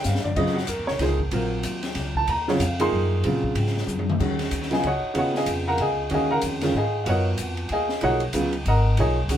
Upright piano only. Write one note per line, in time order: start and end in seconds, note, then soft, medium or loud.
0.00 0.30 D4 soft
0.00 0.30 G4 medium
0.00 0.30 A4 medium
0.00 0.30 A#4 medium
0.06 0.25 F5 medium
0.24 0.36 D5 medium
0.37 0.55 C#3 medium
0.37 0.55 F#3 medium
0.37 0.55 C4 medium
0.37 0.55 F4 medium
0.37 0.56 D#5 medium
0.55 0.68 F#4 medium
0.67 0.87 A#4 medium
0.87 1.00 C#5 medium
1.00 1.18 F3 medium
1.00 1.18 A#3 medium
1.00 1.18 D#4 medium
1.00 1.19 G#4 medium
1.00 1.50 C5 medium
1.33 2.21 F#3 medium
1.33 2.21 C4 soft
1.33 2.21 F4 medium
1.33 2.21 A#4 medium
2.17 2.28 A5 medium
2.29 2.48 A#5 medium
2.48 2.59 C#3 medium
2.48 2.59 F#3 medium
2.48 2.59 C4 medium
2.48 2.59 F4 medium
2.48 2.61 C#5 medium
2.63 2.80 F5 medium
2.79 3.21 F3 medium
2.79 3.21 A#3 medium
2.79 3.22 D#4 medium
2.79 3.22 G#4 medium
2.79 3.22 C6 medium
3.24 4.12 C#3 medium
3.24 4.13 F#3 medium
3.24 4.13 C4 medium
3.24 4.13 F4 medium
4.20 4.67 D#3 soft
4.20 4.68 G#3 soft
4.20 4.68 C#4 soft
4.20 4.68 F#4 medium
4.71 4.82 C#3 medium
4.71 4.82 F#3 medium
4.71 4.82 B3 medium
4.71 4.82 F4 medium
4.71 4.84 G#4 medium
4.71 4.84 D#5 medium
4.71 4.84 F5 medium
4.71 4.84 G#5 medium
4.87 5.13 F#4 medium
4.87 5.15 C#5 medium
4.87 5.15 D#5 medium
4.87 5.15 F#5 medium
5.14 6.03 C#3 medium
5.14 6.03 B3 medium
5.14 6.03 F4 medium
5.14 5.17 F#4 medium
5.18 5.36 F#4 medium
5.18 5.36 C#5 medium
5.18 5.36 D#5 medium
5.18 5.36 F#5 medium
5.37 5.48 G#4 medium
5.37 5.48 D#5 medium
5.37 5.48 F5 medium
5.37 5.48 G#5 medium
5.68 5.79 A#4 medium
5.68 5.80 F5 medium
5.68 5.79 F#5 medium
5.68 5.79 A#5 medium
5.81 6.10 G#4 medium
5.81 6.10 D#5 medium
5.81 6.10 F5 medium
5.81 6.10 G#5 medium
6.10 6.58 D#3 medium
6.10 6.58 G#3 soft
6.10 6.59 C#4 medium
6.10 6.59 F#4 medium
6.10 6.32 G#4 medium
6.10 6.32 D#5 medium
6.10 6.30 F5 medium
6.10 6.31 G#5 medium
6.31 6.39 A#4 medium
6.31 6.38 F5 medium
6.31 6.38 F#5 medium
6.31 6.38 A#5 medium
6.63 6.74 D#3 medium
6.63 6.74 G#3 medium
6.63 6.74 C#4 medium
6.63 6.74 F4 medium
6.77 7.06 G#4 medium
6.77 7.06 D#5 medium
6.77 7.02 F5 medium
6.77 7.06 G#5 medium
7.04 7.95 B3 medium
7.04 7.95 F4 medium
7.04 7.95 F#4 medium
7.04 7.95 A#4 medium
7.04 7.06 F5 medium
7.09 7.27 C#5 medium
7.09 7.27 D#5 medium
7.09 7.27 F#5 medium
7.72 8.01 G#4 medium
7.72 8.01 D#5 medium
7.72 8.01 F5 medium
7.72 8.01 G#5 medium
8.01 8.20 F3 medium
8.01 8.20 A#3 medium
8.01 8.20 D#4 medium
8.01 8.22 F#4 medium
8.01 8.20 G#4 medium
8.01 8.22 C#5 medium
8.01 8.22 D#5 medium
8.01 8.22 F#5 medium
8.34 8.52 C#3 medium
8.34 8.52 F#3 medium
8.34 8.52 B3 medium
8.34 8.52 F4 medium
8.68 8.97 A#4 medium
8.68 8.97 D#5 medium
8.68 8.97 F#5 medium
8.68 8.97 A#5 medium
8.99 9.16 F3 medium
8.99 9.16 A#3 soft
8.99 9.16 D#4 medium
8.99 9.16 G#4 medium
8.99 9.18 C#5 medium
8.99 9.18 D#5 medium
8.99 9.18 G#5 medium
9.29 9.37 D#3 medium
9.29 9.37 G#3 medium
9.29 9.37 C#4 soft
9.29 9.37 F#4 medium